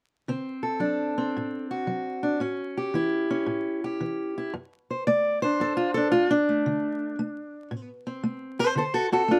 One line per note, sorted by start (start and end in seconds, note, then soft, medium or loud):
0.28 0.78 D3 medium
0.28 1.16 C4 medium
0.63 1.70 A4 soft
0.80 1.30 F#3 medium
0.80 2.22 D4 soft
1.18 2.39 C4 soft
1.36 1.85 A2 medium
1.71 2.41 F#4 soft
1.87 2.37 F#3 medium
2.23 2.38 D4 soft
2.40 2.90 A2 medium
2.40 3.29 C#4 medium
2.77 3.83 G4 medium
2.94 3.43 E3 medium
2.94 4.37 E4 medium
3.30 4.51 C#4 soft
3.46 3.96 A2 medium
3.84 4.52 G4 soft
4.01 4.50 E3 medium
4.38 4.52 E4 soft
4.54 5.03 F#2 medium
4.90 5.06 C5 soft
5.07 5.56 A3 medium
5.07 5.42 D5 medium
5.42 5.97 D4 soft
5.42 6.12 C5 medium
5.60 6.09 F#2 medium
5.60 5.76 A4 medium
5.77 5.94 F4 medium
5.94 6.30 D4 soft
5.94 6.11 A4 medium
6.12 6.48 A3 medium
6.12 6.29 F4 medium
6.31 7.89 D4 medium
6.49 7.19 A3 soft
6.66 7.15 D3 medium
7.19 7.68 A3 medium
7.71 8.20 A2 medium
8.07 8.78 C4 soft
8.23 8.73 A3 medium
8.59 8.68 A4 medium
8.59 8.77 C5 medium
8.75 9.25 D3 medium
8.75 8.83 A4 medium
8.75 8.94 C5 medium
8.94 9.06 F#4 medium
8.94 9.12 A4 medium
9.12 9.31 C4 soft
9.12 9.21 F#4 medium
9.12 9.39 A4 medium
9.28 9.39 A3 medium
9.28 9.39 D4 medium
9.28 9.39 F4 medium